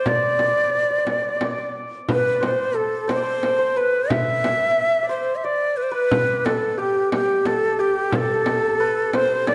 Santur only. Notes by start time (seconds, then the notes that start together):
Already playing: C5 E5
0.07 D5
0.15 D5
0.22 D5
0.29 D5
0.38 D5
0.44 D5
0.51 D5
0.60 D5
0.69 D5
0.75 D5
0.83 D5
0.90 D5
0.98 D5
1.05 D5
1.13 D5
1.22 D5
1.29 D5
1.36 D5
1.44 D5
1.51 D5
1.58 D5
2.10 B4
2.34 D5
2.41 C5
2.74 A4
3.08 C5
3.16 D5
3.23 C5
3.59 C5
3.76 B4
4.10 E5
5.03 D5
5.09 C5
5.44 D5
5.92 B4
6.78 G4
7.12 G4
7.46 A4
7.73 A4
7.79 G4
8.11 A4
8.19 A4
8.25 A4
8.34 A4
8.42 A4
8.49 A4
8.57 A4
8.65 A4
8.80 B4
9.15 C5
9.48 D5